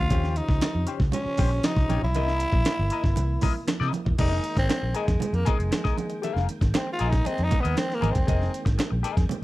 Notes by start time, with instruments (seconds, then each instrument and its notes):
Already playing: tonewheel organ C#3 F3 G4 C5, tenor saxophone F4
0.10 fingered electric bass D#2, clean electric guitar C#4 G4 C5, kick, closed hi-hat, muted conga
0.24 snare
0.29 tenor saxophone F4
0.36 tenor saxophone D#4, closed hi-hat
0.49 fingered electric bass C#2, muted clean electric guitar stroke, kick, snare
0.61 muted clean electric guitar stroke, snare, closed hi-hat, high conga
0.75 fingered electric bass F2
0.87 clean electric guitar C#4 G4 C5, closed hi-hat
1.00 fingered electric bass C#2, muted clean electric guitar stroke, kick, snare
1.12 tenor saxophone C#4, muted clean electric guitar stroke, closed hi-hat, muted conga, low conga
1.26 muted fingered electric bass stroke
1.37 fingered electric bass A#1, clean electric guitar C#4 G4 C5, kick, open hi-hat, muted conga, low conga
1.51 muted clean electric guitar stroke
1.63 tenor saxophone D#4, muted clean electric guitar stroke, snare, closed hi-hat, high conga
1.76 fingered electric bass C2, muted clean electric guitar stroke, kick, snare
1.89 fingered electric bass A#1, clean electric guitar C#4 G4 C#5, closed hi-hat, high conga
2.02 fingered electric bass B1, tenor saxophone E4, muted clean electric guitar stroke
2.14 fingered electric bass C2, tonewheel organ E3 A#3 E4, clean electric guitar E4 A#4 D#5, closed hi-hat, muted conga
2.28 snare
2.40 closed hi-hat
2.53 fingered electric bass A#1, muted clean electric guitar stroke, kick
2.65 muted clean electric guitar stroke, snare, closed hi-hat, high conga
2.79 fingered electric bass G1
2.90 clean electric guitar E4 A#4 D#5, closed hi-hat
3.04 fingered electric bass G1, muted clean electric guitar stroke, kick, snare
3.16 fingered electric bass C2, muted clean electric guitar stroke, closed hi-hat, muted conga
3.41 clean electric guitar E4 A#4 D#5, kick, open hi-hat, muted conga, low conga
3.54 muted clean electric guitar stroke
3.67 muted clean electric guitar stroke, snare, closed hi-hat, high conga
3.80 fingered electric bass C3, clean electric guitar E4 A#4 D#5, snare
3.93 closed hi-hat, high conga
4.05 fingered electric bass E1, muted clean electric guitar stroke, kick
4.18 fingered electric bass F1, tonewheel organ D#3 G#3 A#3 G5, tenor saxophone D#4, clean electric guitar G#4 A#4 D#5, kick, closed hi-hat, crash, muted conga
4.32 snare
4.44 closed hi-hat
4.57 fingered electric bass G#1, tenor saxophone C4, muted clean electric guitar stroke, kick, snare, closed hi-hat
4.69 muted clean electric guitar stroke, snare, closed hi-hat, high conga
4.82 fingered electric bass A#1, muted clean electric guitar stroke
4.94 tenor saxophone G#3, clean electric guitar G#4 A#4 D#5, closed hi-hat
5.07 fingered electric bass F2, muted clean electric guitar stroke, kick, snare, closed hi-hat
5.20 muted clean electric guitar stroke, muted fingered electric bass stroke, closed hi-hat, muted conga, low conga
5.33 fingered electric bass F2, tenor saxophone A#3, muted clean electric guitar stroke, closed hi-hat
5.45 tenor saxophone G#3, clean electric guitar G#4 A#4 D#5, kick, closed hi-hat, muted conga, low conga
5.59 fingered electric bass F1, muted clean electric guitar stroke, closed hi-hat
5.71 muted clean electric guitar stroke, snare, closed hi-hat, high conga
5.84 clean electric guitar G#4 A#4 D#5, kick, snare
5.98 closed hi-hat, high conga
6.10 muted clean electric guitar stroke, closed hi-hat
6.22 clean electric guitar G#4 A#4 F5, closed hi-hat, muted conga
6.36 fingered electric bass F1, snare
6.49 closed hi-hat, muted conga
6.61 fingered electric bass G#1, muted clean electric guitar stroke, kick, snare, closed hi-hat
6.74 tenor saxophone C4, muted clean electric guitar stroke, snare, closed hi-hat, high conga
6.87 muted clean electric guitar stroke
6.93 tenor saxophone F4
6.99 fingered electric bass A#1, clean electric guitar G#4 A#4 D#5, closed hi-hat
7.09 tenor saxophone D#4, muted clean electric guitar stroke, kick, closed hi-hat
7.13 snare
7.25 tenor saxophone C4, clean electric guitar G#4 A#4 D#5, muted fingered electric bass stroke, closed hi-hat, muted conga
7.38 fingered electric bass F2, closed hi-hat
7.44 tenor saxophone D#4
7.51 muted clean electric guitar stroke, kick, closed hi-hat, muted conga, low conga
7.60 tenor saxophone B3, clean electric guitar A#4 D#5
7.65 fingered electric bass D#2, clean electric guitar G#4, closed hi-hat
7.77 tenor saxophone C4, snare, closed hi-hat, high conga
7.89 muted clean electric guitar stroke, snare
7.95 tenor saxophone A#3
8.01 fingered electric bass G#1, clean electric guitar G#4 A#4 D#5, closed hi-hat, high conga
8.11 tenor saxophone C4, muted clean electric guitar stroke, closed hi-hat
8.16 fingered electric bass E1, kick
8.27 fingered electric bass F1, clean electric guitar G#4 A#4 D#5, kick, closed hi-hat, muted conga
8.42 snare
8.54 closed hi-hat
8.65 fingered electric bass G#1, muted clean electric guitar stroke, kick, snare, closed hi-hat
8.78 muted clean electric guitar stroke, snare, closed hi-hat, high conga
8.90 fingered electric bass A#1, muted clean electric guitar stroke
9.03 clean electric guitar G#4 A#4 D#5, closed hi-hat
9.17 fingered electric bass F2, muted clean electric guitar stroke, kick, snare, closed hi-hat
9.29 muted clean electric guitar stroke, muted fingered electric bass stroke, closed hi-hat, muted conga, low conga